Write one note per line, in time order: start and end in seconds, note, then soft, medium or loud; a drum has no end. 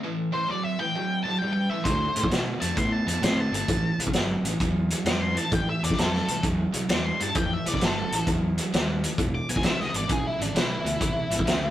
0.03 0.30 A2 medium
0.03 0.30 E3 medium
0.32 0.46 A2 medium
0.32 0.46 E3 medium
0.32 0.47 C5 medium
0.49 0.75 A2 medium
0.49 0.76 F#3 medium
0.49 0.63 D5 medium
0.63 0.79 E5 medium
0.79 0.92 A2 medium
0.79 0.92 E3 medium
0.79 1.23 G5 medium
0.95 1.22 A2 medium
0.95 1.22 F#3 medium
1.24 1.38 A2 medium
1.24 1.38 F#3 medium
1.24 1.39 A5 medium
1.39 1.68 A2 medium
1.39 1.68 G3 medium
1.39 1.52 G5 medium
1.53 1.70 G5 medium
1.70 1.84 A2 medium
1.70 1.84 E3 medium
1.70 1.84 E5 medium
1.84 2.05 D2 medium
1.84 2.13 D3 medium
1.84 2.13 A3 medium
1.84 2.29 C5 medium
1.84 kick medium
1.84 closed hi-hat medium
2.16 2.26 A2 medium
2.16 2.29 D3 medium
2.16 2.30 A3 medium
2.16 closed hi-hat medium
2.23 kick medium
2.30 2.51 B2 medium
2.30 2.58 D3 medium
2.30 2.59 B3 medium
2.30 snare loud
2.30 closed hi-hat medium
2.61 2.72 F2 medium
2.61 2.75 D3 medium
2.61 2.75 A3 medium
2.61 2.76 A5 medium
2.61 closed hi-hat medium
2.76 2.98 A2 medium
2.76 3.04 D3 medium
2.76 3.04 B3 medium
2.76 2.92 C6 medium
2.76 kick loud
2.76 closed hi-hat medium
2.92 3.07 A5 medium
3.06 3.17 F2 medium
3.06 3.21 D3 medium
3.06 3.21 B3 medium
3.06 3.22 A5 medium
3.06 closed hi-hat medium
3.21 3.42 A2 medium
3.21 3.50 D3 medium
3.21 3.50 C4 medium
3.21 3.40 C6 medium
3.21 snare loud
3.21 closed hi-hat medium
3.40 3.54 A5 medium
3.52 3.62 G1 medium
3.52 3.66 D3 medium
3.52 3.67 A3 medium
3.52 closed hi-hat medium
3.56 3.99 A5 medium
3.68 3.89 A1 medium
3.68 3.96 A2 medium
3.68 3.96 E3 medium
3.68 kick loud
3.68 closed hi-hat medium
3.98 4.09 C2 medium
3.98 4.13 A2 medium
3.98 4.13 E3 medium
3.98 closed hi-hat medium
4.07 kick medium
4.13 4.34 G1 medium
4.13 4.42 A2 medium
4.13 4.42 F#3 medium
4.13 snare loud
4.13 closed hi-hat medium
4.43 4.54 A1 medium
4.43 4.58 A2 medium
4.43 4.59 E3 medium
4.43 closed hi-hat medium
4.60 4.92 E2 medium
4.60 4.88 A2 medium
4.60 4.88 F#3 medium
4.60 kick medium
4.60 closed hi-hat medium
4.90 5.05 A2 medium
4.90 5.05 F#3 medium
4.90 closed hi-hat medium
5.04 5.36 F2 medium
5.04 5.33 A2 medium
5.04 5.33 G3 medium
5.04 5.21 D6 loud
5.04 snare loud
5.04 closed hi-hat medium
5.21 5.36 C6 medium
5.36 5.49 A2 medium
5.36 5.50 E3 medium
5.36 5.51 A5 medium
5.36 closed hi-hat medium
5.51 5.72 A1 medium
5.51 5.79 A2 medium
5.51 5.79 E3 medium
5.51 5.67 G5 medium
5.51 kick loud
5.51 closed hi-hat medium
5.69 5.83 E5 medium
5.83 5.93 E2 medium
5.83 5.96 A2 medium
5.83 5.96 E3 medium
5.83 5.98 D5 medium
5.83 closed hi-hat medium
5.90 kick medium
5.90 snare soft
5.98 6.19 F2 medium
5.98 6.25 A2 medium
5.98 6.25 F#3 medium
5.98 6.43 A4 medium
5.98 snare loud
5.98 closed hi-hat medium
6.14 snare soft
6.28 6.38 C2 medium
6.28 6.41 A2 medium
6.28 6.42 E3 medium
6.28 closed hi-hat medium
6.43 6.64 E2 medium
6.43 6.70 A2 medium
6.43 6.71 F#3 medium
6.43 kick medium
6.43 closed hi-hat medium
6.73 6.84 C2 medium
6.73 6.87 A2 medium
6.73 6.87 F#3 medium
6.73 closed hi-hat medium
6.89 7.10 E2 medium
6.89 7.16 A2 medium
6.89 7.16 G3 medium
6.89 7.04 D6 medium
6.89 snare loud
6.89 closed hi-hat medium
7.06 7.20 C6 medium
7.20 7.31 G2 medium
7.20 7.33 A2 medium
7.20 7.33 E3 medium
7.20 7.36 A5 medium
7.20 closed hi-hat medium
7.35 7.56 F2 medium
7.35 7.62 A2 medium
7.35 7.62 E3 medium
7.35 7.53 G5 medium
7.35 kick loud
7.35 closed hi-hat medium
7.53 7.66 E5 medium
7.66 7.76 C2 medium
7.66 7.79 A2 medium
7.66 7.80 E3 medium
7.66 7.81 D5 medium
7.66 closed hi-hat medium
7.74 kick medium
7.74 snare soft
7.81 8.02 G1 medium
7.81 8.09 A2 medium
7.81 8.09 F#3 medium
7.81 8.27 A4 medium
7.81 snare loud
7.81 closed hi-hat medium
8.12 8.22 A1 medium
8.12 8.26 A2 medium
8.12 8.26 E3 medium
8.12 closed hi-hat medium
8.27 8.58 E2 medium
8.27 8.55 A2 medium
8.27 8.55 F#3 medium
8.27 kick medium
8.27 closed hi-hat medium
8.58 8.71 A2 medium
8.58 8.71 F#3 medium
8.58 closed hi-hat medium
8.73 9.04 D#2 medium
8.73 9.00 A2 medium
8.73 9.00 G3 medium
8.73 snare medium
8.73 closed hi-hat medium
9.04 9.17 A2 medium
9.04 9.17 E3 medium
9.04 closed hi-hat medium
9.18 9.39 E1 medium
9.18 9.46 E2 medium
9.18 9.46 B2 medium
9.18 kick loud
9.18 closed hi-hat medium
9.35 9.48 D6 medium
9.49 9.59 B1 medium
9.49 9.62 E2 medium
9.49 9.63 B2 medium
9.49 9.63 G#5 medium
9.49 closed hi-hat medium
9.56 kick medium
9.56 snare soft
9.63 9.84 C2 medium
9.63 9.91 E2 medium
9.63 9.91 C#3 medium
9.63 9.81 E5 medium
9.63 snare loud
9.63 closed hi-hat medium
9.80 9.94 D#5 medium
9.80 snare soft
9.94 10.04 G#1 medium
9.94 10.07 E2 medium
9.94 10.08 B2 medium
9.94 10.10 D5 medium
9.94 closed hi-hat medium
10.08 10.30 B1 medium
10.08 10.36 E2 medium
10.08 10.37 C#3 medium
10.08 kick loud
10.08 closed hi-hat medium
10.12 10.26 G#4 medium
10.27 10.42 E4 medium
10.39 10.50 G#1 medium
10.39 10.53 E2 medium
10.39 10.53 C#3 medium
10.39 10.57 D4 medium
10.39 closed hi-hat medium
10.54 10.75 B1 medium
10.54 10.82 E2 medium
10.54 10.83 D3 medium
10.54 11.70 E4 medium
10.54 snare loud
10.54 closed hi-hat medium
10.84 10.95 D2 medium
10.84 10.99 E2 medium
10.84 10.99 B2 medium
10.84 closed hi-hat medium
11.00 11.22 C2 medium
11.00 11.28 E2 medium
11.00 11.28 B2 medium
11.00 kick medium
11.00 closed hi-hat medium
11.30 11.41 G#1 medium
11.30 11.44 E2 medium
11.30 11.45 B2 medium
11.30 closed hi-hat medium
11.39 kick medium
11.45 11.67 D2 medium
11.45 11.70 E2 medium
11.45 11.70 C#3 medium
11.45 snare loud
11.45 closed hi-hat medium